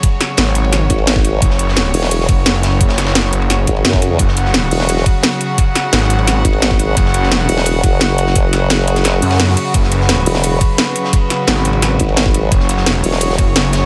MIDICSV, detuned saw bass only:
0, 0, Header, 1, 2, 480
1, 0, Start_track
1, 0, Tempo, 346821
1, 44, Time_signature, 4, 2, 24, 8
1, 19175, End_track
2, 0, Start_track
2, 0, Title_t, "Detuned saw bass"
2, 0, Program_c, 0, 39
2, 524, Note_on_c, 0, 32, 100
2, 1225, Note_off_c, 0, 32, 0
2, 1964, Note_on_c, 0, 30, 98
2, 2665, Note_off_c, 0, 30, 0
2, 3164, Note_on_c, 0, 30, 98
2, 3385, Note_off_c, 0, 30, 0
2, 3404, Note_on_c, 0, 30, 99
2, 4585, Note_off_c, 0, 30, 0
2, 4604, Note_on_c, 0, 30, 97
2, 5065, Note_off_c, 0, 30, 0
2, 5804, Note_on_c, 0, 30, 96
2, 6505, Note_off_c, 0, 30, 0
2, 8204, Note_on_c, 0, 32, 104
2, 8905, Note_off_c, 0, 32, 0
2, 9644, Note_on_c, 0, 30, 96
2, 10345, Note_off_c, 0, 30, 0
2, 12764, Note_on_c, 0, 42, 96
2, 13225, Note_off_c, 0, 42, 0
2, 13484, Note_on_c, 0, 30, 93
2, 14185, Note_off_c, 0, 30, 0
2, 15884, Note_on_c, 0, 32, 100
2, 16585, Note_off_c, 0, 32, 0
2, 17324, Note_on_c, 0, 30, 95
2, 18025, Note_off_c, 0, 30, 0
2, 18524, Note_on_c, 0, 30, 97
2, 18745, Note_off_c, 0, 30, 0
2, 18763, Note_on_c, 0, 30, 93
2, 19175, Note_off_c, 0, 30, 0
2, 19175, End_track
0, 0, End_of_file